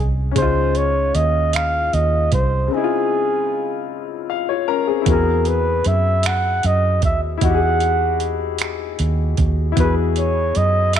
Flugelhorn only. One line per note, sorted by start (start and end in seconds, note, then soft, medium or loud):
0.37 0.79 C5 medium
0.77 1.17 C#5 medium
1.15 1.57 D#5 medium
1.55 1.96 F5 medium
1.94 2.32 D#5 medium
2.34 2.75 C5 medium
2.73 3.90 G#4 medium
5.10 5.50 A#4 medium
5.48 5.89 B4 medium
5.87 6.28 E5 medium
6.27 6.68 F#5 medium
6.66 7.04 D#5 medium
7.05 7.21 E5 medium
7.45 8.27 F#5 medium
9.80 9.96 B4 medium
10.18 10.59 C#5 medium
10.57 10.95 D#5 medium
10.96 11.00 E5 loud